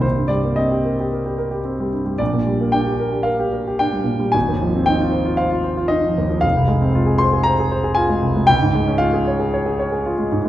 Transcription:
\new Staff \with { instrumentName = "Grand piano" } { \time 4/4 \key f \dorian \tempo 4 = 115 << { c''8 d''8 ees''2~ ees''8 r8 | d''4 g''4 f''4 g''4 | aes''4 g''4 f''4 ees''4 | \key f \minor f''4. c'''8 bes''4 aes''4 |
g''4 f''2~ f''8 r8 | } \\ { c,16 g,16 g16 bes16 c'16 g'16 bes'16 g'16 bes'16 g'16 bes'16 g'16 c'16 g16 g,16 g16 | bes,,16 bes,16 g16 bes16 d'16 g'16 bes'16 g'16 bes'16 g'16 bes'16 g'16 d'16 g16 bes,16 g16 | aes,,16 ees,16 f16 c'16 ees'16 f'16 c''16 f'16 c''16 f'16 c''16 f'16 ees'16 f16 ees,16 f16 | f,,16 c,16 aes16 c'16 f'16 aes'16 c''16 aes'16 c''16 aes'16 c''16 aes'16 f'16 aes16 c,16 aes16 |
des,16 aes,16 aes16 des'16 f'16 aes'16 des''16 aes'16 des''16 aes'16 des''16 aes'16 f'16 aes16 aes,16 aes16 | } >> }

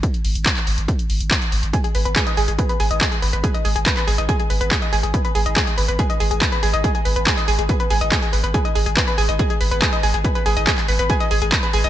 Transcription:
<<
  \new Staff \with { instrumentName = "Synth arpeggio sound" } { \time 4/4 \key gis \minor \tempo 4 = 141 r1 | gis'16 gis'16 b'16 b'16 gis'16 dis''16 gis'16 gis'16 b'16 b'16 gis'16 dis''16 gis'16 gis'16 b'16 b'16 | gis'16 dis''16 gis'16 gis'16 b'16 b'16 gis'16 dis''16 gis'16 gis'16 b'16 b'16 gis'16 dis''16 gis'16 gis'16 | b'16 b'16 gis'16 dis''16 gis'16 gis'16 b'16 b'16 gis'16 dis''16 gis'16 gis'16 b'16 b'16 gis'16 dis''16 |
gis'16 gis'16 b'16 b'16 gis'16 dis''16 gis'16 gis'16 b'16 b'16 gis'16 dis''16 gis'16 gis'16 b'16 b'16 | gis'16 dis''16 gis'16 gis'16 b'16 b'16 gis'16 dis''16 gis'16 gis'16 b'16 b'16 gis'16 dis''16 gis'16 gis'16 | b'16 b'16 gis'16 dis''16 gis'16 gis'16 b'16 b'16 gis'16 dis''16 gis'16 gis'16 b'16 b'16 gis'16 dis''16 | }
  \new Staff \with { instrumentName = "Sub bass" } { \clef bass \time 4/4 \key gis \minor r8 gis,,16 gis,,16 r8 gis,,16 gis,,16 r8 gis,,16 gis,,16 r8 gis,,16 gis,,16 | r8 gis,,16 gis,,16 r8 gis,,16 gis,,16 r8 gis,,16 gis,,16 r8 gis,,16 gis,,16 | r8 gis,,16 gis,,16 r8 gis,,16 gis,,16 r8 gis,,16 gis,,16 r8 gis,,16 gis,,16 | r8 gis,,16 gis,,16 r8 gis,,16 gis,,16 r8 gis,,16 gis,,16 r8 gis,,16 gis,,16 |
r8 gis,,16 gis,,16 r8 gis,,16 gis,,16 r8 gis,,16 gis,,16 r8 gis,,16 gis,,16 | r8 gis,,16 gis,,16 r8 gis,,16 gis,,16 r8 gis,,16 gis,,16 r8 gis,,16 gis,,16 | r8 gis,,16 gis,,16 r8 gis,,16 gis,,16 r8 gis,,16 gis,,16 r8 gis,,16 gis,,16 | }
  \new DrumStaff \with { instrumentName = "Drums" } \drummode { \time 4/4 <hh bd>16 hh16 hho16 hh16 <hc hh bd>16 <hc hh>16 hho16 hh16 <hh bd>16 hh16 hho16 hh16 <hc hh bd>16 hh16 hho16 hh16 | <hh bd>16 hh16 hho16 hh16 <hc hh bd>16 hh16 hho16 hh16 <hh bd>16 hh16 hho16 hh16 <hc hh bd>16 hh16 hho16 hh16 | <hh bd>16 hh16 hho16 hh16 <hc hh bd>16 <hc hh>16 hho16 hh16 <hh bd>16 hh16 hho16 hh16 <hc hh bd>16 hh16 hho16 hh16 | <hh bd>16 hh16 hho16 hh16 <hc hh bd>16 hh16 hho16 hh16 <hh bd>16 hh16 hho16 hh16 <hc hh bd>16 hh16 hho16 hh16 |
<hh bd>16 hh16 hho16 hh16 <hc hh bd>16 <hc hh>16 hho16 hh16 <hh bd>16 hh16 hho16 hh16 <hc hh bd>16 hh16 hho16 hh16 | <hh bd>16 hh16 hho16 hh16 <hc hh bd>16 hh16 hho16 hh16 <hh bd>16 hh16 hho16 hh16 <hc hh bd>16 hh16 hho16 hh16 | <hh bd>16 hh16 hho16 hh16 <hc hh bd>16 <hc hh>16 hho16 hh16 <hh bd>16 hh16 hho16 hh16 <hc hh bd>16 hh16 hho16 hh16 | }
>>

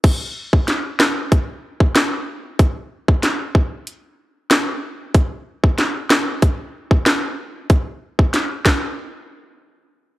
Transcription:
\new DrumStaff \with { instrumentName = "Drums" } \drummode { \time 4/4 \tempo 4 = 94 <cymc hh bd>8. bd16 <hh sn>8 <ss sn>8 <hh bd>8. bd16 <hh ss sn>4 | <hh bd>8. bd16 <hh sn>8 bd8 hh4 <hh ss sn>4 | <hh bd>8. bd16 <hh sn>8 <ss sn>8 <hh bd>8. bd16 <hh ss sn>4 | <hh bd>8. bd16 <hh sn>8 <bd ss sn>8 r4 r4 | }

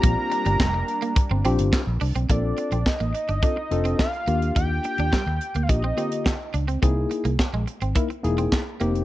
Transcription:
<<
  \new Staff \with { instrumentName = "Analog synth lead" } { \time 4/4 \key bes \major \tempo 4 = 106 bes''2. r4 | d''4 ees''2 f''4 | g''4.~ g''16. f''32 ees''4. r8 | r1 | }
  \new Staff \with { instrumentName = "Tine electric piano" } { \time 4/4 \key bes \major <c' d' f' g'>4 r4. <c' d' f' g'>8 r4 | <c' d' f' a'>4 r4 <c' d' f' a'>8 <c' d' f' a'>8 r8 <bes d' f' g'>8~ | <bes d' f' g'>4 r4 <bes d' f' g'>8 <d bes f' g'>8 r4 | <bes dis' e' gis'>4 r4 <bes dis' e' bes'>8 <bes dis' e' gis'>8 r8 <bes c' ees' g'>8 | }
  \new Staff \with { instrumentName = "Clean electric guitar" } { \time 4/4 \key bes \major bes16 r8 g16 g16 r8 bes16 r16 c'16 c'16 r8. d'16 c'16 | bes16 r8 c'16 r16 bes16 r16 d'16 d'16 r8 c'16 r8 bes16 r16 | ees'16 r8 d'16 g16 r8 bes16 r16 c'16 c'16 r8. d'16 c'16 | c'16 r8 bes16 r16 gis16 r16 c'16 e'16 r8 c'16 r8 bes16 r16 | }
  \new Staff \with { instrumentName = "Analog synth pad" } { \time 4/4 \key bes \major <g bes d'>1 | r1 | r1 | r1 | }
  \new Staff \with { instrumentName = "Fingered electric bass" } { \clef bass \time 4/4 \key bes \major bes,,16 r8 g,,16 f,,8 r8. g,,16 bes,,16 g,,16 r16 bes,,16 c,16 ces,16 | bes,,8 r16 bes,,16 r16 a,,16 r16 g,,16 r8 f,,8 r8 ees,8 | ees,8 r16 ees,16 r16 ees,16 r16 d,16 bes,,8 r4 des,8 | c,8 r16 c,16 r16 bes,,16 r16 gis,,16 r8 e,,8 r8 f,,8 | }
  \new DrumStaff \with { instrumentName = "Drums" } \drummode { \time 4/4 <hh bd>8 hh16 hh16 <hc bd sn>8 hh16 hh16 <hh bd>8 hh16 hh16 <hc bd sn>8 hho16 hh16 | <hh bd>8 hh16 hh16 <hc bd sn>16 hh16 hh16 hh16 <hh bd>8 hh16 hh16 <hc bd sn>16 hh16 hh16 hh16 | <hh bd>8 hh16 hh16 <hc bd sn>8 hh16 hh16 <hh bd>8 hh16 hh16 <hc bd sn>8 hh16 hh16 | <hh bd>8 hh16 hh16 <hc bd sn>8 hh16 hh16 <hh bd>16 hh16 hh16 hh16 <hc bd sn>8 hh16 hh16 | }
>>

